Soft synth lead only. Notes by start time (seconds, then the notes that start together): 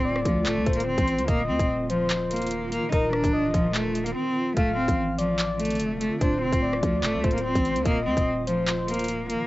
0.05 D5
0.67 C5
1.28 D#5
1.90 C5
2.92 A#4
3.33 D#5
4.57 F5
5.18 D5
6.21 C5
6.62 D5
7.24 C5
7.85 D#5
8.47 C5